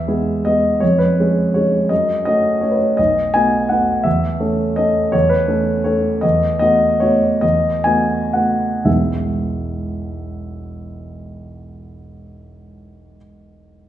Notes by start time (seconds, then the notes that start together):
Already playing: E2 E5
0.08 G#3 B3 G#4
0.45 G#3 B3 G#4 D#5
0.80 F2 C#5
0.98 B4
1.20 G#3 C#4 G#4
1.54 G#3 C#4 G#4 C#5
1.89 F#2 D#5
2.25 A3 C#4 F#4 D#5
2.61 A3 C#4 F#4 C#5
2.70 B4
2.76 C#5
2.97 B1 D#5
3.34 A3 B3 F#4 G#5
3.69 A3 B3 F#4 F#5
4.04 E2 E5
4.40 A3 C#4 A4
4.76 A3 C#4 A4 D#5
5.12 E2 C#5
5.29 B4
5.48 A3 C#4 A4
5.84 A3 C#4 A4 C#5
6.21 E2 D#5
6.59 A3 B3 F#4 D#5
7.00 A3 B3 F#4 C#5
7.41 E2 D#5
7.84 A3 B3 F#4 G#5
8.33 A3 B3 F#4 F#5
8.85 E1 B1 E3 G#3 B3 E4 E5